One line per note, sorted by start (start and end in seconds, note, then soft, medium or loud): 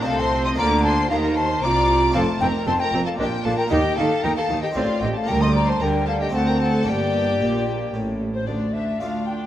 0.01 0.54 A3 medium
0.01 0.55 D#4 medium
0.01 0.56 F4 medium
0.01 0.18 A5 loud
0.05 0.57 C2 medium
0.05 0.57 C3 medium
0.05 0.54 C3 medium
0.05 0.58 C4 medium
0.05 0.19 A4 loud
0.05 0.21 F5 loud
0.18 0.46 C5 loud
0.18 0.45 A5 medium
0.18 0.44 C6 loud
0.45 0.58 D#5 loud
0.45 0.51 C6 medium
0.45 0.50 D#6 loud
0.54 2.09 A#3 medium
0.54 2.09 D4 medium
0.54 2.10 F4 medium
0.54 0.83 A#5 loud
0.54 0.83 D6 loud
0.58 1.10 D2 loud
0.58 1.09 D3 loud
0.58 1.07 D3 medium
0.58 1.09 A#3 medium
0.58 0.66 D5 loud
0.84 1.10 C5 loud
0.84 1.10 A5 loud
0.84 1.10 C6 loud
1.10 1.62 D#2 medium
1.10 1.61 D#3 medium
1.10 1.59 D#3 medium
1.10 1.61 A#3 medium
1.10 1.36 A#4 medium
1.10 1.16 F5 loud
1.10 1.36 A#5 loud
1.36 1.62 C5 medium
1.36 1.64 A5 loud
1.36 1.62 C6 loud
1.62 2.14 C2 medium
1.62 2.13 C3 medium
1.62 2.11 C3 medium
1.62 2.15 F4 medium
1.62 2.15 D5 loud
1.62 2.14 A#5 loud
1.62 2.14 D6 loud
2.11 2.22 F1 loud
2.11 2.22 F2 medium
2.11 3.14 A3 medium
2.11 3.15 C4 medium
2.11 2.23 C4 medium
2.11 3.15 F4 medium
2.11 2.20 F5 loud
2.11 2.41 A5 loud
2.15 2.39 F2 medium
2.15 2.23 A4 loud
2.40 2.48 F1 medium
2.40 2.49 F2 medium
2.40 2.65 F2 medium
2.40 2.49 C4 medium
2.40 2.66 A#4 loud
2.40 2.47 G5 loud
2.40 2.67 A#5 loud
2.66 2.74 F1 medium
2.66 2.75 F2 medium
2.66 2.91 F2 medium
2.66 2.75 C4 medium
2.66 2.72 C5 loud
2.66 2.81 A5 loud
2.66 2.72 C6 loud
2.80 3.05 A#4 loud
2.80 3.05 G5 loud
2.80 3.05 A#5 loud
2.92 3.00 F1 medium
2.92 3.01 F2 medium
2.92 3.17 F2 medium
2.92 3.01 C4 medium
3.05 3.11 A4 medium
3.05 3.18 F5 medium
3.05 3.18 A5 loud
3.14 3.66 A#3 medium
3.14 3.68 D4 medium
3.14 3.69 F4 medium
3.18 3.27 A#1 medium
3.18 3.27 A#2 medium
3.18 3.42 A#2 medium
3.18 3.28 D4 medium
3.18 3.27 G4 medium
3.18 3.24 D#5 medium
3.18 3.44 G5 loud
3.44 3.53 A#1 medium
3.44 3.53 A#2 medium
3.44 3.68 A#2 medium
3.44 3.54 D4 medium
3.44 3.50 A4 medium
3.44 3.57 F5 medium
3.44 3.58 A5 loud
3.58 3.70 A#4 medium
3.58 3.64 G5 medium
3.58 3.71 A#5 loud
3.67 3.79 D#2 loud
3.67 3.79 D#3 loud
3.67 4.70 A#3 medium
3.67 4.71 D#4 medium
3.67 4.72 G4 medium
3.67 3.96 G4 loud
3.67 3.96 D#5 medium
3.67 3.97 G5 loud
3.71 3.95 D#3 medium
3.71 3.79 D#4 medium
3.97 4.05 D#2 medium
3.97 4.05 D#3 medium
3.97 4.21 D#3 medium
3.97 4.05 D#4 medium
3.97 4.23 A4 loud
3.97 4.25 F5 loud
3.97 4.23 A5 loud
4.23 4.31 D#2 medium
4.23 4.31 D#3 medium
4.23 4.47 D#3 medium
4.23 4.31 D#4 medium
4.23 4.28 A#4 loud
4.23 4.36 G5 loud
4.23 4.36 A#5 loud
4.36 4.45 A4 medium
4.36 4.62 F5 medium
4.36 4.62 A5 loud
4.49 4.58 D#2 medium
4.49 4.57 D#3 medium
4.49 4.73 D#3 medium
4.49 4.58 D#4 medium
4.62 4.68 G4 medium
4.62 4.78 D#5 medium
4.62 4.75 G5 medium
4.71 4.83 A2 medium
4.71 5.24 C4 medium
4.71 5.25 D#4 medium
4.71 5.26 G4 medium
4.71 5.01 F5 loud
4.75 4.83 A1 medium
4.75 4.99 A2 medium
4.75 4.84 C4 medium
4.75 5.01 F4 medium
4.75 5.04 D5 medium
5.01 5.10 A1 medium
5.01 5.09 A2 medium
5.01 5.25 A2 medium
5.01 5.10 C4 medium
5.01 5.15 G4 medium
5.01 5.15 D#5 medium
5.01 5.14 G5 loud
5.14 5.28 A4 medium
5.14 5.30 F5 medium
5.14 5.28 A5 loud
5.24 5.77 D2 medium
5.24 5.77 D2 loud
5.24 6.28 A#3 medium
5.24 6.29 D4 medium
5.24 6.30 G4 medium
5.24 5.40 A#5 loud
5.28 5.77 D2 medium
5.28 5.77 G3 medium
5.28 5.42 A#4 loud
5.28 5.43 G5 loud
5.39 5.47 D#5 medium
5.39 5.54 C6 medium
5.39 5.53 D#6 loud
5.53 5.67 D5 medium
5.53 5.71 A#5 medium
5.53 5.67 D6 medium
5.66 5.81 C5 medium
5.66 5.84 A5 medium
5.66 5.80 C6 loud
5.80 6.32 D2 medium
5.80 6.29 D3 medium
5.80 6.32 D3 medium
5.80 6.32 G3 medium
5.80 6.07 A#4 medium
5.80 6.08 G5 loud
5.80 5.88 A#5 medium
6.07 6.20 A4 medium
6.07 6.23 F5 medium
6.07 6.12 A5 medium
6.20 6.33 G4 medium
6.20 6.34 D#5 medium
6.20 6.33 G5 medium
6.29 6.83 C4 medium
6.29 6.83 D4 medium
6.29 6.85 F#4 medium
6.33 6.86 D2 medium
6.33 6.83 D2 medium
6.33 6.86 C4 medium
6.33 6.39 A4 medium
6.33 6.50 F#5 medium
6.33 6.46 A5 loud
6.48 6.60 A#4 medium
6.48 6.61 G5 medium
6.48 6.60 A#5 loud
6.60 6.87 A4 medium
6.60 6.87 F#5 medium
6.60 6.87 A5 loud
6.83 7.41 G2 medium
6.83 7.89 A#3 medium
6.83 7.90 D4 medium
6.83 8.43 G4 soft
6.87 7.41 G1 medium
6.87 7.37 G2 medium
6.87 8.25 A#3 medium
6.87 7.94 G4 loud
6.87 7.92 D5 medium
6.87 7.94 G5 loud
7.41 7.93 A#1 medium
7.41 7.93 A#2 medium
7.41 7.90 A#2 medium
7.94 8.46 A1 medium
7.94 8.43 A2 medium
7.94 8.46 A2 medium
8.34 8.46 C5 medium
8.34 8.49 C5 medium
8.47 8.94 D2 medium
8.47 8.91 D2 soft
8.47 8.72 D4 soft
8.47 8.72 F4 soft
8.47 8.75 D5 medium
8.47 8.74 D5 soft
8.73 8.99 D4 soft
8.73 8.99 F4 soft
8.73 9.01 E5 medium
8.73 9.00 E5 medium
9.00 9.46 D2 soft
9.00 9.44 D2 soft
9.00 9.38 A3 soft
9.00 9.25 D4 soft
9.00 9.39 D4 soft
9.00 9.25 F4 soft
9.00 9.39 F4 soft
9.00 9.26 F5 medium
9.26 9.46 D4 soft
9.26 9.46 F4 soft
9.26 9.32 G5 medium
9.26 9.46 G5 soft